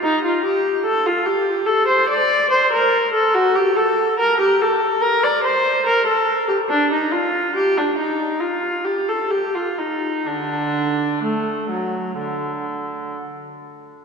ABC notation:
X:1
M:4/4
L:1/16
Q:1/4=70
K:Dphr
V:1 name="Viola"
E F G2 A F G2 A c d2 c B2 A | ^F G A2 B G A2 B d c2 B A2 G | D E F2 G D E2 F2 G A G F E2 | [D,D]4 A,2 ^F,2 D,4 z4 |]